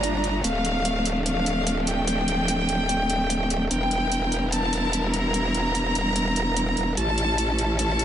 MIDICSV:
0, 0, Header, 1, 6, 480
1, 0, Start_track
1, 0, Key_signature, -1, "minor"
1, 0, Tempo, 408163
1, 521, Time_signature, 4, 2, 24, 8
1, 9463, End_track
2, 0, Start_track
2, 0, Title_t, "Violin section"
2, 0, Program_c, 0, 48
2, 0, Note_on_c, 0, 82, 102
2, 430, Note_off_c, 0, 82, 0
2, 521, Note_on_c, 0, 77, 96
2, 1390, Note_off_c, 0, 77, 0
2, 1481, Note_on_c, 0, 77, 91
2, 2110, Note_off_c, 0, 77, 0
2, 2201, Note_on_c, 0, 79, 103
2, 4270, Note_off_c, 0, 79, 0
2, 4360, Note_on_c, 0, 79, 97
2, 5230, Note_off_c, 0, 79, 0
2, 5320, Note_on_c, 0, 81, 92
2, 5949, Note_off_c, 0, 81, 0
2, 6040, Note_on_c, 0, 82, 99
2, 8110, Note_off_c, 0, 82, 0
2, 8200, Note_on_c, 0, 81, 99
2, 9069, Note_off_c, 0, 81, 0
2, 9160, Note_on_c, 0, 81, 94
2, 9463, Note_off_c, 0, 81, 0
2, 9463, End_track
3, 0, Start_track
3, 0, Title_t, "String section"
3, 0, Program_c, 1, 48
3, 0, Note_on_c, 1, 55, 79
3, 0, Note_on_c, 1, 57, 88
3, 0, Note_on_c, 1, 58, 72
3, 482, Note_off_c, 1, 55, 0
3, 482, Note_off_c, 1, 58, 0
3, 521, Note_on_c, 1, 53, 76
3, 522, Note_on_c, 1, 62, 72
3, 4313, Note_off_c, 1, 57, 0
3, 4323, Note_off_c, 1, 53, 0
3, 4323, Note_off_c, 1, 62, 0
3, 4361, Note_on_c, 1, 55, 77
3, 4361, Note_on_c, 1, 64, 72
3, 4361, Note_on_c, 1, 70, 84
3, 8162, Note_off_c, 1, 55, 0
3, 8162, Note_off_c, 1, 64, 0
3, 8163, Note_off_c, 1, 70, 0
3, 8201, Note_on_c, 1, 52, 82
3, 8201, Note_on_c, 1, 61, 73
3, 8201, Note_on_c, 1, 69, 86
3, 9463, Note_off_c, 1, 52, 0
3, 9463, Note_off_c, 1, 61, 0
3, 9463, Note_off_c, 1, 69, 0
3, 9463, End_track
4, 0, Start_track
4, 0, Title_t, "Wobble bass"
4, 0, Program_c, 2, 39
4, 0, Note_on_c, 2, 31, 87
4, 498, Note_off_c, 2, 31, 0
4, 521, Note_on_c, 2, 26, 91
4, 4338, Note_off_c, 2, 26, 0
4, 4360, Note_on_c, 2, 28, 88
4, 8178, Note_off_c, 2, 28, 0
4, 8200, Note_on_c, 2, 33, 86
4, 9463, Note_off_c, 2, 33, 0
4, 9463, End_track
5, 0, Start_track
5, 0, Title_t, "Swell"
5, 0, Program_c, 3, 103
5, 0, Note_on_c, 3, 60, 56
5, 520, Note_off_c, 3, 60, 0
5, 9463, End_track
6, 0, Start_track
6, 0, Title_t, "Drums"
6, 41, Note_on_c, 9, 42, 79
6, 159, Note_off_c, 9, 42, 0
6, 281, Note_on_c, 9, 42, 53
6, 398, Note_off_c, 9, 42, 0
6, 520, Note_on_c, 9, 42, 83
6, 638, Note_off_c, 9, 42, 0
6, 760, Note_on_c, 9, 42, 51
6, 878, Note_off_c, 9, 42, 0
6, 1000, Note_on_c, 9, 42, 77
6, 1118, Note_off_c, 9, 42, 0
6, 1241, Note_on_c, 9, 42, 52
6, 1358, Note_off_c, 9, 42, 0
6, 1480, Note_on_c, 9, 42, 81
6, 1598, Note_off_c, 9, 42, 0
6, 1720, Note_on_c, 9, 42, 57
6, 1838, Note_off_c, 9, 42, 0
6, 1960, Note_on_c, 9, 42, 79
6, 2077, Note_off_c, 9, 42, 0
6, 2200, Note_on_c, 9, 42, 52
6, 2318, Note_off_c, 9, 42, 0
6, 2440, Note_on_c, 9, 42, 81
6, 2558, Note_off_c, 9, 42, 0
6, 2680, Note_on_c, 9, 42, 51
6, 2798, Note_off_c, 9, 42, 0
6, 2920, Note_on_c, 9, 42, 73
6, 3037, Note_off_c, 9, 42, 0
6, 3161, Note_on_c, 9, 42, 47
6, 3278, Note_off_c, 9, 42, 0
6, 3401, Note_on_c, 9, 42, 76
6, 3518, Note_off_c, 9, 42, 0
6, 3641, Note_on_c, 9, 42, 53
6, 3758, Note_off_c, 9, 42, 0
6, 3881, Note_on_c, 9, 42, 72
6, 3999, Note_off_c, 9, 42, 0
6, 4121, Note_on_c, 9, 42, 51
6, 4238, Note_off_c, 9, 42, 0
6, 4360, Note_on_c, 9, 42, 74
6, 4478, Note_off_c, 9, 42, 0
6, 4601, Note_on_c, 9, 42, 48
6, 4718, Note_off_c, 9, 42, 0
6, 4840, Note_on_c, 9, 42, 70
6, 4958, Note_off_c, 9, 42, 0
6, 5080, Note_on_c, 9, 42, 47
6, 5198, Note_off_c, 9, 42, 0
6, 5320, Note_on_c, 9, 42, 73
6, 5438, Note_off_c, 9, 42, 0
6, 5560, Note_on_c, 9, 42, 50
6, 5678, Note_off_c, 9, 42, 0
6, 5801, Note_on_c, 9, 42, 74
6, 5918, Note_off_c, 9, 42, 0
6, 6041, Note_on_c, 9, 42, 48
6, 6158, Note_off_c, 9, 42, 0
6, 6281, Note_on_c, 9, 42, 69
6, 6398, Note_off_c, 9, 42, 0
6, 6521, Note_on_c, 9, 42, 50
6, 6638, Note_off_c, 9, 42, 0
6, 6761, Note_on_c, 9, 42, 70
6, 6878, Note_off_c, 9, 42, 0
6, 7000, Note_on_c, 9, 42, 46
6, 7118, Note_off_c, 9, 42, 0
6, 7241, Note_on_c, 9, 42, 71
6, 7358, Note_off_c, 9, 42, 0
6, 7481, Note_on_c, 9, 42, 50
6, 7599, Note_off_c, 9, 42, 0
6, 7721, Note_on_c, 9, 42, 70
6, 7838, Note_off_c, 9, 42, 0
6, 7961, Note_on_c, 9, 42, 48
6, 8078, Note_off_c, 9, 42, 0
6, 8200, Note_on_c, 9, 42, 74
6, 8318, Note_off_c, 9, 42, 0
6, 8441, Note_on_c, 9, 42, 46
6, 8558, Note_off_c, 9, 42, 0
6, 8681, Note_on_c, 9, 42, 70
6, 8798, Note_off_c, 9, 42, 0
6, 8921, Note_on_c, 9, 42, 46
6, 9038, Note_off_c, 9, 42, 0
6, 9161, Note_on_c, 9, 42, 71
6, 9278, Note_off_c, 9, 42, 0
6, 9400, Note_on_c, 9, 42, 50
6, 9463, Note_off_c, 9, 42, 0
6, 9463, End_track
0, 0, End_of_file